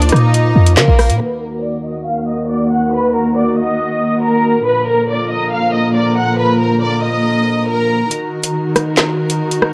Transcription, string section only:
0.00 1.17 F3 medium
0.00 1.17 A#3 medium
0.00 1.17 F4 loud
1.20 4.62 D#2 medium
1.20 4.62 D#3 medium
1.20 4.62 A#3 medium
1.20 4.62 F#4 medium
4.66 8.08 A#2 medium
4.66 8.08 D3 medium
4.66 8.08 F3 medium
4.66 8.08 A#4 medium
8.11 9.73 D#3 medium
8.11 9.73 D#4 medium
8.11 9.73 F#4 medium
8.11 9.73 A#4 medium

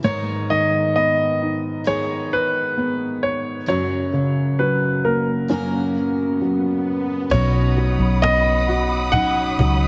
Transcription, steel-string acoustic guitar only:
0.03 1.83 G#2 medium
0.03 1.84 D#3 medium
0.03 1.85 G#3 medium
0.03 1.86 B3 medium
0.03 1.87 D#4 medium
0.07 1.89 A#4 medium
1.84 3.66 G#2 medium
1.84 3.67 D#3 medium
1.84 3.68 G#3 medium
1.84 3.68 B3 medium
1.84 3.69 D#4 medium
3.66 5.47 F#2 medium
3.66 5.48 C#3 medium
3.66 5.50 F#3 medium
3.66 5.52 C#4 medium
5.48 7.31 F#2 medium
5.48 7.29 C#3 medium
5.48 7.31 F#3 medium
5.48 7.32 A#3 medium
5.48 7.32 C#4 medium
5.53 7.33 A#4 medium
7.30 9.12 B2 medium
7.30 9.11 F#3 medium
7.30 9.13 C#4 medium
7.30 9.14 D#4 medium
7.34 9.14 F#4 medium
9.13 9.88 F#3 medium
9.13 9.88 C#4 medium
9.13 9.88 D#4 medium
9.13 9.88 F#4 medium

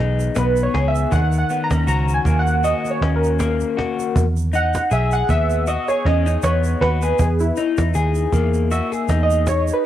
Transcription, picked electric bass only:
0.00 0.29 B1 medium
0.37 0.67 B1 medium
0.74 1.04 C#2 medium
1.12 1.42 D#2 loud
1.71 1.84 D#2 medium
1.88 2.18 C#2 medium
2.25 2.72 D#2 medium
3.01 3.62 D#2 loud
4.16 4.76 E2 loud
4.92 5.22 B1 medium
5.29 5.76 D#2 medium
6.05 6.36 E2 loud
6.43 6.74 E2 loud
6.81 7.12 D#2 medium
7.19 7.50 E2 loud
7.78 7.92 E2 medium
7.95 8.26 D#2 medium
8.33 8.80 E2 medium
9.09 9.70 E2 loud

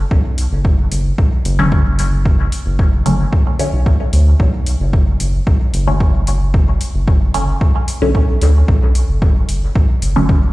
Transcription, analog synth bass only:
0.11 0.47 B1 loud
0.52 0.87 F#1 medium
0.91 1.13 F#1 medium
1.18 1.29 B1 medium
1.45 2.48 F#1 loud
2.66 3.02 F#1 medium
3.06 3.27 F#1 medium
3.73 4.09 B1 medium
4.13 4.35 D2 medium
4.40 4.76 B1 loud
4.80 5.16 F#1 medium
5.20 5.42 F#1 medium
5.47 5.58 B1 medium
5.74 6.77 F#1 loud
6.95 7.30 F#1 medium
7.34 7.56 F#1 medium
8.02 8.37 B1 medium
8.42 8.63 D2 medium
8.68 9.04 B1 loud
9.09 9.45 F#1 medium
9.49 9.70 F#1 medium
9.76 9.87 B1 medium
10.02 10.53 F#1 loud

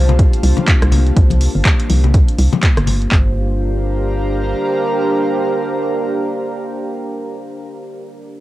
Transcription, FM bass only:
0.00 0.26 C2 medium
0.43 0.53 C2 medium
0.82 1.11 C2 medium
1.17 1.48 C2 medium
1.55 1.62 G1 medium
1.90 2.21 C2 medium
2.39 2.48 C2 loud
2.77 3.07 G1 medium
3.12 4.54 G1 medium

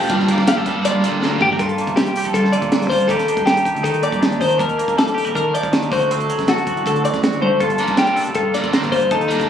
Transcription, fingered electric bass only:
0.01 0.09 F2 medium
0.09 0.33 G2 loud
0.37 0.45 G2 medium
0.57 0.65 G2 medium
0.76 0.83 G2 medium
0.95 1.02 G3 medium
1.04 1.19 A#2 medium
1.22 1.38 D2 loud
1.40 1.48 F2 medium
1.60 1.75 G2 medium
1.87 2.03 C3 medium
2.25 2.33 F2 medium
2.34 2.50 G3 medium
2.62 2.78 A#2 medium
2.80 2.88 G2 medium
2.90 3.06 G3 medium
3.09 3.25 D#2 medium
3.37 3.53 G2 medium
3.74 3.82 D2 medium
3.84 4.00 D#3 medium
4.13 4.29 G2 medium
4.30 4.39 D#2 medium
4.41 4.57 D#3 medium
4.59 4.75 D#2 medium
4.88 5.04 F2 medium
5.26 5.33 A#1 medium
5.35 5.51 D#3 medium
5.63 5.79 D#2 medium
5.82 5.89 D#2 medium
5.91 6.07 D2 medium
6.11 6.26 D2 medium
6.38 6.54 F#2 medium
6.75 6.83 C2 medium
6.86 7.02 D3 medium
7.14 7.29 F#2 medium
7.32 7.40 D2 medium
7.43 7.58 D2 medium
7.60 7.76 G1 medium
7.88 8.04 C2 medium
8.27 8.34 F1 medium
8.35 8.51 G2 medium
8.64 8.80 A#1 medium
8.82 8.90 G1 medium
8.92 9.08 G2 medium
9.11 9.27 D#2 medium
9.40 9.49 G2 medium

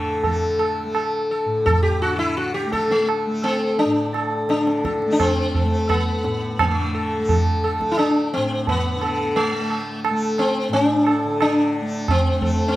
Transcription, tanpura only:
0.00 1.45 A2 medium
0.00 2.04 D3 medium
0.00 0.24 A3 medium
0.24 0.84 A3 medium
0.84 2.66 A3 medium
1.45 3.84 A2 medium
2.05 4.45 D3 medium
2.66 3.26 A3 medium
3.26 5.06 A3 medium
3.85 6.24 A2 soft
4.45 6.59 D3 soft
5.06 5.64 A3 medium
5.64 7.18 A3 medium
6.24 8.36 A2 medium
6.59 8.94 D3 medium
7.18 7.78 A3 medium
7.78 9.52 A3 medium
8.36 10.68 A2 medium
8.94 11.24 D3 medium
9.52 10.11 A3 soft
10.11 11.81 A3 medium
10.69 12.76 A2 medium
11.25 12.76 D3 medium
11.81 12.40 A3 medium
12.40 12.76 A3 medium

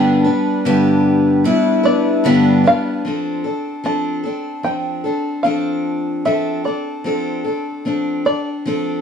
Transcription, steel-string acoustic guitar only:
0.00 0.26 G2 medium
0.00 0.26 D3 medium
0.00 0.26 G3 medium
0.00 0.25 B3 medium
0.00 0.25 D4 loud
0.00 0.23 B4 medium
0.24 0.65 G3 soft
0.24 0.65 B3 soft
0.24 0.65 D4 medium
0.24 0.65 B4 medium
0.65 1.46 G2 medium
0.65 1.46 D3 medium
0.65 1.43 G3 medium
0.65 1.44 B3 medium
0.65 1.45 D4 medium
0.65 1.46 B4 medium
1.44 1.85 G3 medium
1.44 1.84 B3 medium
1.44 1.84 D4 medium
1.44 1.82 B4 medium
1.83 2.23 G3 soft
1.83 2.24 B3 medium
1.83 2.25 D4 medium
1.83 2.25 B4 medium
2.24 2.65 G2 medium
2.24 2.66 D3 medium
2.24 2.65 G3 medium
2.24 2.65 B3 loud
2.24 2.64 D4 loud
2.24 2.63 B4 loud
2.64 3.04 G3 medium
2.64 3.06 B3 medium
2.64 3.06 D4 medium
2.64 3.05 B4 medium
3.05 3.45 F3 medium
3.05 3.46 C4 medium
3.05 3.45 D4 medium
3.05 3.43 A4 medium
3.44 3.83 C4 soft
3.44 3.84 D4 soft
3.44 3.85 A4 soft
3.84 4.25 F3 medium
3.84 4.25 C4 medium
3.84 4.24 D4 medium
3.84 4.22 A4 medium
4.24 4.63 C4 soft
4.24 4.64 D4 soft
4.24 4.65 A4 soft
4.63 5.04 F3 medium
4.63 5.05 C4 soft
4.63 5.04 D4 soft
4.63 5.03 A4 medium
5.04 5.43 C4 soft
5.04 5.45 D4 soft
5.04 5.45 A4 soft
5.44 6.24 F3 medium
5.44 6.25 C4 medium
5.44 6.26 D4 medium
5.44 6.26 A4 medium
6.25 6.65 F3 medium
6.25 6.65 C4 medium
6.25 6.65 D4 medium
6.25 6.63 A4 medium
6.64 7.04 C4 soft
6.64 7.05 D4 soft
6.64 7.05 A4 soft
7.04 7.45 F3 medium
7.04 7.45 C4 medium
7.04 7.45 D4 medium
7.04 7.43 A4 medium
7.44 7.85 C4 soft
7.44 7.85 D4 medium
7.44 7.85 A4 medium
7.85 8.25 F3 soft
7.85 8.25 C4 medium
7.85 8.25 D4 medium
7.85 8.24 A4 medium
8.25 8.66 C4 soft
8.25 8.66 D4 soft
8.25 8.65 A4 soft
8.66 9.01 F3 medium
8.66 9.01 C4 medium
8.66 9.01 D4 medium
8.66 9.01 A4 medium

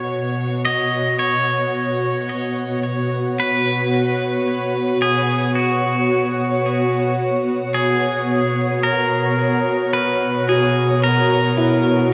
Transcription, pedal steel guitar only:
0.00 0.65 C#5 medium
0.65 1.19 D#5 medium
1.19 2.79 C#5 medium
3.40 5.07 B4 medium
5.02 5.58 G#4 medium
5.55 7.15 F#4 medium
7.74 8.83 G#4 medium
8.83 9.93 A#4 medium
9.93 10.48 B4 medium
10.49 11.04 G#4 medium
11.04 12.08 A#4 medium

